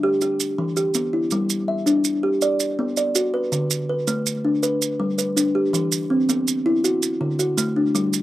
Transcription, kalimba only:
0.03 G4
0.22 G4
0.58 E3
0.77 G4
0.95 B3
1.13 E4
1.32 G3
1.68 E5
1.86 D4
2.23 G4
2.42 D5
2.79 B3
2.97 D5
3.15 F#4
3.34 B4
3.52 D3
3.89 B4
4.07 A3
4.45 D4
4.63 B4
5.00 G3
5.18 B4
5.36 D4
5.55 G4
5.73 E3
6.10 C4
6.29 B3
6.66 E4
6.84 F#4
7.21 D3
7.39 F#4
7.58 A3
7.76 D4
7.95 G3

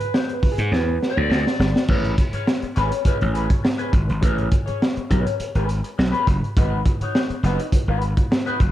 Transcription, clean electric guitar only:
Already playing: B4
0.14 C5
0.32 B4
0.52 G#4
0.72 B4
1.10 D5
1.89 C#4 G#4 B4
2.18 muted clean electric guitar stroke
2.33 C#4 G#4 C#5
2.63 muted clean electric guitar stroke
2.76 C#4 G#4 B4
2.92 muted clean electric guitar stroke
3.05 C#4 G#4 B4
3.19 muted clean electric guitar stroke
3.33 C#4 G#4 B4
3.49 muted clean electric guitar stroke
3.63 muted clean electric guitar stroke
3.78 C#4 G#4 B4
3.92 muted clean electric guitar stroke
4.07 muted clean electric guitar stroke
4.21 C#4 G#4 B4
4.51 muted clean electric guitar stroke
4.66 C#4 G#4 C#5
4.96 muted clean electric guitar stroke
5.10 C#4 G#4 B4
5.26 muted clean electric guitar stroke
5.40 muted clean electric guitar stroke
5.56 C#4 G#4 B4
5.68 muted clean electric guitar stroke
5.84 muted clean electric guitar stroke
5.98 muted clean electric guitar stroke
6.12 C#4 G#4 B4
6.26 muted clean electric guitar stroke
6.43 muted clean electric guitar stroke
6.57 D#4 F#4 B4
6.86 muted clean electric guitar stroke
7.02 D#4 F#4 C#5
7.31 muted clean electric guitar stroke
7.44 D#4 F#4 B4
7.61 muted clean electric guitar stroke
7.74 muted clean electric guitar stroke
7.88 D#4 F#4 B4
8.03 muted clean electric guitar stroke
8.17 muted clean electric guitar stroke
8.31 muted clean electric guitar stroke
8.46 D#4 F#4 B4
8.59 muted clean electric guitar stroke

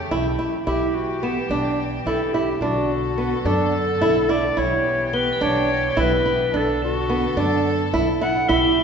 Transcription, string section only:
Already playing: C#3 A3 G4
0.65 E3 B3 G4
2.61 D3 A4
4.57 E3 G4
6.53 D3 A4
8.50 E3 G4

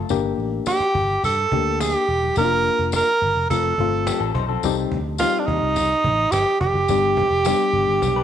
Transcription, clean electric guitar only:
4.07 G4
4.20 C4 A4
4.35 D#4 C5
4.48 C4 A4
8.16 D4 B4

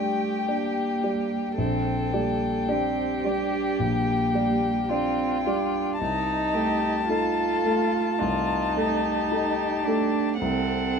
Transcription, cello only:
Already playing: A3
0.48 A#3
1.58 C4
2.13 A#3
2.71 C4
3.26 D4
3.81 A#3
4.91 C4
5.47 D4
5.99 D#4
7.08 F4
8.19 D#4
9.86 D4
10.42 C4

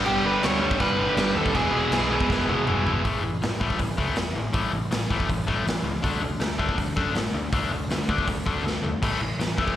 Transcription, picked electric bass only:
0.05 G1
0.24 G1
0.43 D2
0.80 G1
1.17 G1
1.34 D#2
1.55 E1
1.72 E1
1.91 B1
2.30 E1
2.65 E1
2.83 G#1
3.05 A1
3.22 A1
3.41 A1
3.79 A1
3.98 C#2
4.17 E2
4.35 A1
4.54 A1
4.73 A1
4.91 A1
5.11 A1
5.29 A1
5.48 A1
5.66 A1
5.83 C#2
6.04 D2
6.21 D2
6.39 D2
6.78 D2
6.97 F#2
7.15 A2
7.33 D2
7.53 D2
7.70 D2
7.88 D2
8.09 D2
8.28 D2
8.46 D2
8.63 D2
8.82 D2
9.03 A1
9.20 A1
9.38 A1

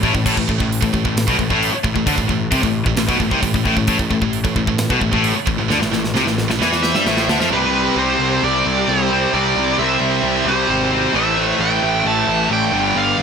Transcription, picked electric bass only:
0.03 A1
0.15 A1
0.25 A1
0.37 A1
0.49 A1
0.60 A1
0.82 A1
0.94 A1
1.06 A1
1.28 B1
1.39 A1
1.50 A1
1.73 muted picked electric bass stroke
1.84 A1
1.96 A1
2.07 D2
2.18 A1
2.29 A1
2.52 C2
2.63 A1
2.86 A1
2.96 A1
3.09 B1
3.20 A1
3.31 C2
3.43 A1
3.54 A1
3.65 A1
3.77 A1
3.88 A1
4.00 A1
4.11 A1
4.22 A1
4.44 A1
4.56 A1
4.67 A1
4.90 B1
5.01 A1
5.12 A1
5.36 muted picked electric bass stroke
5.48 A1
5.58 A1
5.69 D2
5.80 A1
5.91 A1
6.14 C2
6.26 A1
6.50 A1
6.61 E2
6.94 G2
7.06 A1
7.28 D2
7.40 F2
7.50 C2
7.96 C2
8.19 C2
8.43 C2
8.66 C2
8.88 C2
9.34 C2
9.56 C2
9.78 C2
10.00 C2
10.23 C2
10.45 C2
10.68 G#1
11.14 A1
11.59 A1
11.82 A1
12.05 A1
12.27 A1
12.50 A1
12.72 G1
12.95 G1
13.18 G1

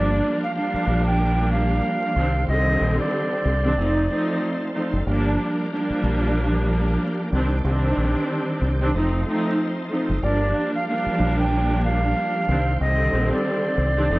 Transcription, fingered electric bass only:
Already playing: G1
0.74 muted fingered electric bass stroke
0.87 A#1
2.16 C2
2.48 C2
2.81 A#1
3.45 C2
3.78 F1
4.93 F#1
5.07 G1
5.90 muted fingered electric bass stroke
6.03 A#1
7.32 C2
7.65 C2
7.97 A#1
8.62 C2
8.94 F1
10.09 F#1
10.23 G1
11.06 muted fingered electric bass stroke
11.20 A#1
12.49 C2
12.81 C2
13.13 A#1
13.78 C2
14.10 F1

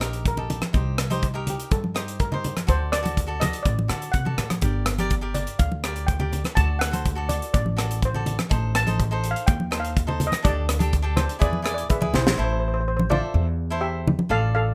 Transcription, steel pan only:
Already playing: C5
0.28 A#4
1.50 G4
1.72 A4
2.20 A#4
2.69 C5
2.92 D5
3.40 D#5
3.63 D5
4.12 F#5
5.34 D5
5.59 F5
6.07 G5
6.55 A5
6.79 F#5
7.29 D5
7.54 D5
8.05 C5
8.76 A5
9.31 F5
9.47 G5
9.80 F5
10.27 D#5
10.45 D5
11.16 C5
11.41 D5
11.74 D5
11.89 G#4 B4 E5
12.15 E4 C5
12.22 C5
12.30 C5
12.38 C5
12.44 C5
12.52 C5
12.60 C5
12.68 C5
12.74 C5
12.81 C5
12.88 C5
12.97 C5
13.10 F4 D5
13.81 G4 E5
14.31 A4 F5
14.55 A4 F5

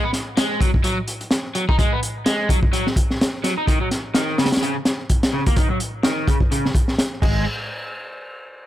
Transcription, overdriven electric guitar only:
0.04 B3
0.37 G#3
0.61 F#3
0.84 F#3
1.55 F#3
1.69 D#4
1.79 G#3
1.92 B3
2.26 G#3
2.50 F#3
2.73 F#3
3.44 F#3
3.58 D#4
3.67 D#3
3.81 F#3
4.15 D#3
4.38 C#3
4.62 C#3
5.33 C#3
5.46 A#3
5.56 D#3
5.70 F#3
6.04 D#3
6.28 C#3
6.51 C#3
7.22 G#3

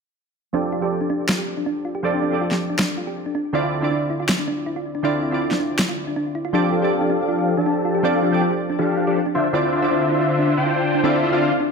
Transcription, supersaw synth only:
6.54 F3 D4 G4 A4 F5
6.72 F3 D4 G4 A4 F5
6.82 F3 D4 G4 A4 F5
7.57 F3 D4 G4 A4 A5
8.04 F3 D4 G4 A4 F5
8.22 F3 D4 G4 A4 F5
8.32 F3 D4 G4 A4 G5
8.79 F3 D4 G4 A4 F5
9.07 F3 D4 G4 A4 D5
9.35 D3 D4 F4 C5 E5
9.54 D3 D4 F4 C5 E5
9.72 D3 D4 F4 C5 E5
9.82 D3 D4 F4 C5 E5
10.57 D3 D4 F4 C5 G5
11.04 D3 D4 F4 C5 E5
11.23 D3 D4 F4 C5 E5
11.32 D3 D4 F4 C5 F5

